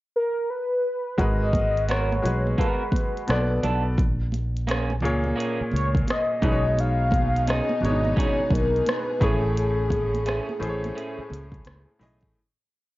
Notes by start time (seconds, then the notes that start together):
0.16 A#4
0.50 B4
1.18 G#1 G#3 F#4 A#4 B4 D#5, kick, closed hi-hat
1.53 kick, closed hi-hat, muted conga, high conga
1.77 closed hi-hat
1.89 B3 F#4 A#4 C#5, cross-stick, closed hi-hat, muted conga
2.12 high conga
2.22 B1 G#3 F#4 G#4 B4, closed hi-hat, low conga
2.47 high conga
2.58 B3 F#4 A#4 B4, kick, closed hi-hat, muted conga
2.92 kick, muted conga, high conga
2.96 closed hi-hat
3.17 closed hi-hat
3.27 B1 B2 B3 A4 D5, cross-stick, closed hi-hat, muted conga, high conga
3.63 B1 B3 D4 A4, closed hi-hat, muted conga, low conga
3.97 A#1, kick, closed hi-hat, muted conga
4.32 closed hi-hat, muted conga, high conga
4.57 closed hi-hat
4.67 A#3 C#4 G#4, closed hi-hat, muted conga
4.71 cross-stick
4.90 high conga
5.00 C#2 A#2 A#3 G#4, muted conga, low conga
5.05 C#5, closed hi-hat
5.24 high conga
5.36 A#3 C#4 G#4
5.40 closed hi-hat
5.61 muted fingered electric bass stroke
5.72 C#2 C#5, high conga
5.76 closed hi-hat
5.95 kick, closed hi-hat
6.07 D#5, cross-stick, closed hi-hat, muted conga, high conga
6.42 B1 B2 G#3 C#4 D#4 G#4 B4, kick, closed hi-hat, muted conga, low conga
6.52 C#5
6.75 B3 D#4 G#4, muted conga
6.79 F5, closed hi-hat
7.11 kick, closed hi-hat, muted conga, high conga
7.36 closed hi-hat
7.47 C#4 D#4 G#4 D#5, cross-stick, closed hi-hat, muted conga
7.69 high conga
7.81 G#1 B2 G#3 D4 C#5, closed hi-hat, low conga
7.90 D#4
8.05 high conga
8.16 C#4 D#4 G#4 C#5, kick, closed hi-hat
8.40 muted fingered electric bass stroke
8.50 B1 A#4, kick, high conga
8.55 closed hi-hat
8.76 closed hi-hat
8.87 B4, cross-stick, closed hi-hat, high conga
9.20 A1 A2 A3 C#4 G#4 C#5, kick, closed hi-hat, muted conga, low conga
9.24 G#4
9.57 closed hi-hat
9.90 kick, closed hi-hat, high conga
10.14 closed hi-hat, high conga
10.26 A3 C#4 G#4, cross-stick, closed hi-hat, muted conga
10.49 high conga
10.60 A1 A2 A3 G#4 C5, closed hi-hat, muted conga, low conga
10.69 C#5
10.84 closed hi-hat, high conga
10.96 A3 C#4 G#4, closed hi-hat
11.19 muted fingered electric bass stroke
11.30 C#2, closed hi-hat, high conga
11.52 kick, closed hi-hat
11.65 C#2, cross-stick, closed hi-hat, high conga
11.99 B1 A2 A3 C#4 G#4 D#5, open hi-hat, muted conga, low conga
12.21 A1, kick, closed hi-hat